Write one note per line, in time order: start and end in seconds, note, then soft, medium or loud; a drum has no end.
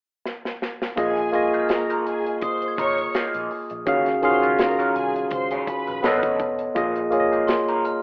0.25 snare medium
0.45 snare medium
0.62 snare medium
0.82 snare medium
0.96 2.22 A#1 medium
0.96 1.19 F3 medium
0.96 1.30 A#3 medium
0.96 1.19 A#3 medium
0.96 1.20 D#4 medium
0.96 1.30 F4 medium
0.96 1.66 G#4 medium
0.96 1.30 G#4 medium
0.96 1.20 G#4 medium
0.96 1.31 D#5 medium
0.96 1.66 G#5 loud
0.96 kick loud
0.96 closed hi-hat medium
1.17 closed hi-hat soft
1.32 2.64 A#3 medium
1.32 2.65 F4 medium
1.32 2.65 G#4 medium
1.32 2.66 D#5 medium
1.32 2.29 C#6 soft
1.32 muted clean electric guitar stroke soft
1.32 closed hi-hat medium
1.53 1.69 F3 soft
1.53 1.69 A#3 soft
1.53 1.68 D#4 soft
1.53 1.68 G#4 medium
1.53 closed hi-hat soft
1.59 2.50 F6 soft
1.69 1.98 A#4 medium
1.69 1.98 A#5 medium
1.69 muted clean electric guitar stroke soft
1.69 snare medium
1.69 closed hi-hat medium
1.90 2.06 F3 medium
1.90 2.06 A#3 medium
1.90 2.06 D#4 medium
1.90 2.07 A#4 medium
1.90 closed hi-hat medium
2.06 2.35 G#4 medium
2.06 2.35 G#5 medium
2.06 muted clean electric guitar stroke soft
2.06 closed hi-hat medium
2.26 muted clean electric guitar stroke soft
2.26 closed hi-hat soft
2.40 2.70 C5 medium
2.40 2.70 C6 medium
2.40 3.38 D#6 medium
2.40 muted clean electric guitar stroke soft
2.40 kick medium
2.40 closed hi-hat medium
2.62 muted fingered electric bass stroke soft
2.62 closed hi-hat soft
2.68 3.59 G#6 soft
2.78 3.06 G#1 medium
2.78 2.96 F3 soft
2.78 2.96 A#3 soft
2.78 2.96 D#4 medium
2.78 2.96 A#4 medium
2.78 3.07 C#5 medium
2.78 3.07 C#6 loud
2.78 kick medium
2.78 closed hi-hat medium
2.98 muted clean electric guitar stroke soft
2.98 closed hi-hat soft
3.15 3.48 F3 medium
3.15 3.48 A#3 medium
3.15 3.48 D#4 medium
3.15 3.48 G#4 medium
3.15 muted fingered electric bass stroke soft
3.15 snare loud
3.15 closed hi-hat medium
3.34 3.47 A#1 medium
3.34 closed hi-hat medium
3.51 muted clean electric guitar stroke soft
3.51 open hi-hat soft
3.70 3.83 A#1 medium
3.70 muted clean electric guitar stroke soft
3.70 closed hi-hat soft
3.86 4.15 D#2 medium
3.86 4.19 D#3 medium
3.86 4.09 F#3 medium
3.86 4.19 C#4 medium
3.86 4.09 C#4 medium
3.86 4.09 F4 medium
3.86 4.20 F#4 medium
3.86 4.09 G#4 medium
3.86 4.20 G#4 medium
3.86 4.20 F5 medium
3.86 kick loud
3.86 closed hi-hat medium
4.06 snare soft
4.06 closed hi-hat soft
4.22 5.54 D#3 medium
4.22 5.54 C#4 medium
4.22 4.30 F4 medium
4.22 5.55 G#4 medium
4.22 4.51 C5 medium
4.22 5.55 F5 medium
4.22 4.51 C6 medium
4.22 5.18 C6 medium
4.22 muted clean electric guitar stroke soft
4.22 closed hi-hat soft
4.30 5.58 F#4 medium
4.42 4.56 C#2 medium
4.42 4.58 F#3 soft
4.42 4.57 C#4 soft
4.42 4.57 F4 medium
4.42 4.57 G#4 medium
4.42 closed hi-hat soft
4.57 4.87 A#4 medium
4.57 4.87 A#5 medium
4.57 muted clean electric guitar stroke soft
4.57 snare loud
4.57 closed hi-hat medium
4.79 4.94 F#3 medium
4.79 4.95 C#4 medium
4.79 4.95 F4 medium
4.79 4.96 A#4 medium
4.79 muted fingered electric bass stroke soft
4.79 closed hi-hat medium
4.94 5.24 C2 medium
4.94 5.23 G#4 medium
4.94 5.24 G#5 medium
4.94 muted clean electric guitar stroke soft
4.94 closed hi-hat medium
5.16 muted clean electric guitar stroke soft
5.16 closed hi-hat soft
5.30 5.59 C#2 medium
5.30 5.60 C5 medium
5.30 5.60 C6 medium
5.30 muted clean electric guitar stroke soft
5.30 kick medium
5.30 closed hi-hat medium
5.51 5.67 F#3 medium
5.51 5.67 C#4 medium
5.51 5.68 F4 medium
5.51 5.68 G#4 medium
5.51 closed hi-hat medium
5.67 6.36 B4 medium
5.67 6.36 B5 medium
5.67 muted clean electric guitar stroke soft
5.67 kick medium
5.67 closed hi-hat medium
5.87 6.01 A#1 medium
5.87 muted clean electric guitar stroke soft
5.87 closed hi-hat soft
6.03 6.19 B1 medium
6.03 6.18 F3 medium
6.03 6.69 B3 medium
6.03 6.19 C4 medium
6.03 6.19 D4 medium
6.03 6.19 G#4 medium
6.03 6.70 A4 medium
6.03 6.70 C#5 medium
6.03 6.71 D#5 medium
6.03 snare loud
6.03 closed hi-hat medium
6.18 6.37 F#3 medium
6.18 6.38 C#4 medium
6.18 6.38 D#4 medium
6.18 6.38 A4 medium
6.23 6.36 A1 medium
6.23 kick medium
6.23 closed hi-hat medium
6.40 6.68 F1 medium
6.40 muted clean electric guitar stroke soft
6.40 kick medium
6.40 closed hi-hat medium
6.59 muted clean electric guitar stroke soft
6.59 closed hi-hat soft
6.75 8.00 A#1 medium
6.75 6.98 F3 medium
6.75 7.08 A#3 medium
6.75 6.98 A#3 medium
6.75 6.99 D#4 medium
6.75 7.09 F4 medium
6.75 7.09 G#4 medium
6.75 6.99 G#4 medium
6.75 7.10 D#5 medium
6.75 kick loud
6.75 closed hi-hat medium
6.96 closed hi-hat soft
7.10 8.03 A#3 medium
7.10 8.03 F4 medium
7.10 8.03 G#4 medium
7.10 7.20 C#5 medium
7.10 muted clean electric guitar stroke soft
7.10 closed hi-hat medium
7.20 8.03 D#5 medium
7.32 7.47 F3 soft
7.32 7.47 A#3 soft
7.32 7.47 D#4 soft
7.32 7.47 G#4 soft
7.32 closed hi-hat soft
7.47 8.03 C6 medium
7.47 muted clean electric guitar stroke soft
7.47 snare loud
7.47 closed hi-hat medium
7.68 7.84 F3 medium
7.68 7.85 A#3 medium
7.68 7.85 D#4 medium
7.68 7.86 A#4 medium
7.68 closed hi-hat medium
7.85 8.03 F6 medium
7.85 muted clean electric guitar stroke soft
7.85 closed hi-hat medium